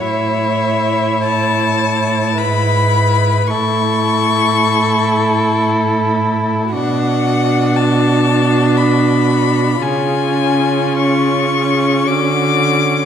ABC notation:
X:1
M:3/4
L:1/8
Q:1/4=56
K:A
V:1 name="Violin"
e2 a2 b2 | c'4 z2 | f2 a2 b2 | g2 c'2 d'2 |]
V:2 name="Violin"
c4 B2 | A6 | F6 | ^E4 F2 |]
V:3 name="Viola"
E6 | E6 | D6 | C6 |]
V:4 name="Cello" clef=bass
A,,4 G,,2 | A,,6 | B,,6 | C,4 D,2 |]